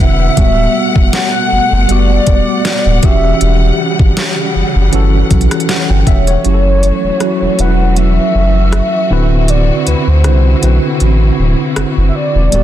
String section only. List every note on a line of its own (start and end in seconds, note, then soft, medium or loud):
0.00 0.34 C3 medium
0.00 0.34 E4 medium
0.00 0.34 B4 medium
0.00 6.41 F#5 medium
0.37 3.00 B2 medium
0.37 3.00 A3 medium
3.03 6.42 C#3 medium
3.03 6.42 G3 medium
6.45 9.08 E3 medium
6.45 9.08 A3 medium
6.45 12.48 F#4 medium
9.10 12.49 C3 medium
9.10 12.49 C4 medium
9.10 12.49 E4 medium
12.53 12.63 B2 medium
12.53 12.63 A3 medium
12.53 12.63 A4 medium